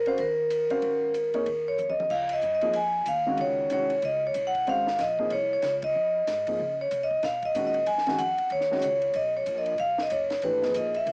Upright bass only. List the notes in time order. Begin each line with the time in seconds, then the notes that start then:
Already playing: G#1
0.18 D#2
0.70 G1
0.82 G#1
1.34 A1
1.46 D#2
1.99 D#2
2.10 C#2
2.42 F#2
2.75 F2
3.06 D#2
3.38 C#2
3.71 C2
4.02 C#2
4.35 C2
4.67 G#1
5.00 A#1
5.31 C2
5.62 C#2
5.95 F2
6.27 G#2
6.59 C#3
6.91 C3
7.23 B2
7.55 A#2
7.87 F#2
8.19 F2
8.39 muted upright bass stroke
8.51 D#2
8.83 C#2
9.15 B1
9.47 A#1
9.79 B1
10.11 F#1
10.43 G#1
10.75 A#1
11.06 C2